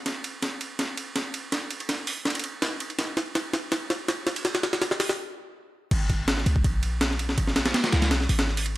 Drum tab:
CC |--------------------------------|--------------------------------|--------------------------------|--------------------------------|
RD |x---x---x---x---x---x---x---x---|x---x-x-x-------xxxxx---x---x-x-|x---x---x---x---x---x---x---x-x-|x-x-x-x-x-----------------------|
HH |--------------------------------|------------o-------------------|--------------------------------|------------o-------------------|
SD |o-------o-------o-------o-------|o-------o-------o-------o-------|o---o---o---o---o---o---o---o---|o-o-o-o-o-o-o-o-----------------|
BD |--------------------------------|--------------------------------|--------------------------------|--------------------------------|

CC |x-------------------------------|--------------------------------|
RD |x---x---x---x---x---x---x---x---|x---x-x-x-x-x-x-x-----x-----x---|
HH |--------------------------------|--------------------o-----o-----|
SD |--------o-o-------------o-o---o-|--o-o-o-o-o-o-o-o-o---o-o-------|
BD |o---o---------o-o---------------|o-------------------------------|